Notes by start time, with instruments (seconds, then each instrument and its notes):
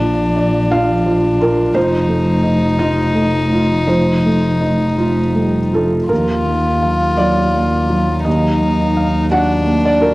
Already playing: felt piano A#1 F4 D5, double bass A#1, cello F3, violin D4
0.02 felt piano F3
0.36 felt piano D5
0.71 felt piano F4 F5
1.06 felt piano F3
1.40 felt piano F4 A#4
1.74 double bass F1, felt piano F2 C5, cello F3, violin D#4
2.08 felt piano A3
2.43 felt piano D#5
2.78 felt piano F4 D#5
3.15 felt piano A3
3.52 felt piano F4
3.87 felt piano F2 C5
4.25 felt piano A3
4.61 felt piano D#5
4.98 cello A3, felt piano F4
5.35 cello G3, felt piano A3
5.73 cello F3, felt piano F4 A4
6.09 felt piano D#2 A#4, double bass D#2, cello F3, violin F4
6.45 cello D#3, felt piano A#3
6.83 cello F#3, felt piano F5
7.17 felt piano F#3 D5
7.54 felt piano A#3
7.89 felt piano F#3
8.25 felt piano D#2 D#5, violin D#4
8.61 felt piano A#3
8.97 felt piano F5
9.31 violin D4, felt piano F#4 F#5
9.66 felt piano A#3
9.85 felt piano D5
10.00 felt piano F#4 A#4